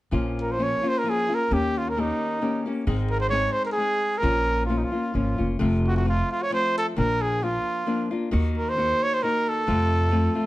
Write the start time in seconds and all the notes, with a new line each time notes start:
0.11 A#1 A#2 F3 A#3 C#4 F4
0.40 A#4
0.51 C5
0.58 F3 A#3 C#4 F4
0.63 C#5
0.83 A#3 C#4 F4
0.88 C5
0.98 A#4
1.04 F3 A#3 C#4 F4
1.09 G#4
1.29 A#3 C#4 F4
1.34 A#4
1.51 D#2 D#3 A#3 C#4 G4
1.77 F4
1.89 A#4
1.96 D#3 A#3 C#4 D#4 G4
2.41 D#3 A#3 C#4 G4
2.66 A#3 C#4 G4
2.87 G#1 G#2 D#3 G#3 C4 D#4 G#4
3.11 A#4
3.20 C5
3.30 G#3 C4 D#4 G#4 C#5
3.52 C5
3.65 A#4
3.72 G#4
3.78 G#3 C4 D#4 G#4
4.18 A#4
4.22 A#1 A#2 F3 A#3 C#4 F4
4.65 F3 F4
4.69 A#3 C#4 F4
4.78 D#4
4.84 F4
4.92 A#3 C#4 F4
5.14 G#1 F3 A#3 C#4 F4
5.38 F1 A#3 C#4 F4
5.59 F1 F2 C3 F3 A3 C4 F4
5.87 F#4
5.97 F#4
6.05 F3 A3 C4 F4
6.31 F4
6.42 C#5
6.50 F3 A3 C4 F4 C5
6.77 A4
6.96 A#1 A#2 F3 A#3 D4 F4 A#4
7.22 G#4
7.42 F3 A#3 D4 F4
7.86 F3 A#3 D4 F4
8.11 A#3 D4 F4
8.31 D#2 D#3 A#3 D#4 F#4
8.57 A#4
8.69 C5
8.76 D#3 A#3 D#4 F#4
9.03 C#5
9.14 C5
9.23 D#3 A#3 D#4 F#4 A#4
9.49 A4
9.67 F2 C3 F3 A3 C4 F4
10.11 F3 A3 C4 F4
10.35 F3 A3 C4 F4